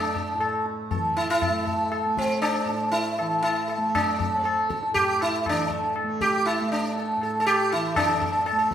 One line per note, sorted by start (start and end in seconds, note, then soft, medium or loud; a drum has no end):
0.00 0.34 A2 medium
0.00 0.93 E3 medium
0.00 1.50 A3 medium
0.00 0.62 D4 medium
0.16 0.39 A4 soft
0.16 tabla ge medium
0.34 2.65 A2 medium
0.40 0.64 A4 soft
0.40 tabla na medium
0.66 tabla te medium
0.91 3.19 E3 medium
0.91 1.14 A4 soft
0.91 tabla tin medium
0.91 tabla ge medium
1.17 1.29 E4 medium
1.17 tabla na medium
1.30 2.01 E4 loud
1.42 tabla na medium
1.42 tabla ge medium
1.50 2.06 A3 medium
1.66 1.89 A4 soft
1.66 tabla ge medium
1.91 2.15 A4 soft
1.91 tabla na medium
2.06 3.78 A3 medium
2.17 2.41 C4 medium
2.17 tabla ke medium
2.42 2.91 D4 medium
2.42 tabla na medium
2.65 4.90 A2 medium
2.65 2.90 A4 soft
2.65 tabla te medium
2.91 3.41 E4 medium
2.91 tabla tin medium
3.18 5.47 E3 medium
3.18 3.42 A4 soft
3.18 tabla na medium
3.42 3.90 E4 medium
3.42 tabla na medium
3.68 3.92 A4 soft
3.68 tabla na medium
3.78 4.34 A3 medium
3.95 4.42 D4 medium
3.95 tabla na loud
3.95 tabla ge medium
4.19 4.42 A4 soft
4.19 tabla ge medium
4.34 6.04 A3 medium
4.42 4.66 C4 medium
4.42 4.67 A4 soft
4.42 tabla na medium
4.69 4.93 A4 soft
4.69 tabla ke medium
4.83 tabla te medium
4.91 7.17 A2 medium
4.91 5.20 G4 loud
4.95 tabla tin medium
4.95 tabla ge medium
5.21 5.47 E4 medium
5.21 tabla na medium
5.46 7.73 E3 medium
5.46 5.71 D4 medium
5.46 tabla na medium
5.46 tabla ge medium
5.70 5.94 A4 soft
5.70 tabla ge medium
5.96 tabla na medium
6.04 6.61 A3 medium
6.21 6.47 G4 loud
6.21 tabla ke medium
6.46 6.71 E4 medium
6.46 tabla na medium
6.61 8.52 A3 medium
6.71 6.94 D4 medium
6.71 tabla te medium
6.96 7.20 A4 soft
6.96 tabla tin medium
7.17 8.74 A2 medium
7.21 7.39 A4 soft
7.21 tabla na medium
7.40 7.46 A4 medium
7.46 7.72 G4 loud
7.46 tabla na medium
7.71 7.96 E3 medium
7.71 7.96 E4 medium
7.71 tabla na medium
7.95 8.74 E3 medium
7.95 8.67 D4 medium
7.95 8.07 A4 soft
7.95 tabla na loud
7.95 tabla ge loud
8.08 8.20 A4 soft
8.21 8.31 A4 soft
8.21 tabla ge medium
8.32 8.45 A4 soft
8.46 8.57 A4 soft
8.46 tabla na medium
8.52 8.74 A3 medium
8.59 8.71 A4 soft
8.71 tabla ke medium